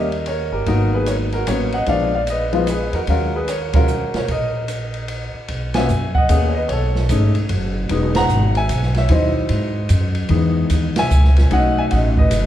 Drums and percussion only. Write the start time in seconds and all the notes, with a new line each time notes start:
0.12 ride
0.26 ride
0.66 kick, ride
1.06 hi-hat pedal, ride
1.32 ride
1.47 hi-hat pedal, ride
1.72 ride
1.86 kick, ride
2.27 hi-hat pedal, ride
2.53 ride
2.67 hi-hat pedal, ride
2.93 ride
3.07 kick, ride
3.48 hi-hat pedal, ride
3.73 kick, ride
3.88 hi-hat pedal
4.14 snare, ride
4.28 kick, ride
4.68 hi-hat pedal, ride
4.94 ride
5.08 ride
5.48 kick, ride
5.74 snare, ride
5.88 hi-hat pedal
6.15 kick
6.29 hi-hat pedal, ride
6.69 kick, ride
6.95 snare
7.09 kick, hi-hat pedal, ride
7.35 ride
7.49 kick, ride
7.89 kick, ride
8.15 snare, ride
8.29 hi-hat pedal
8.55 ride
8.69 kick, hi-hat pedal, ride
8.83 snare
8.95 snare, ride
9.09 kick, ride
9.49 kick, ride
9.89 kick, hi-hat pedal, ride
10.15 ride
10.29 kick, ride
10.70 kick, hi-hat pedal, ride
10.96 snare, ride
11.11 hi-hat pedal
11.24 snare
11.37 snare, ride
11.51 kick, ride
11.91 kick, ride
12.17 kick
12.31 hi-hat pedal, ride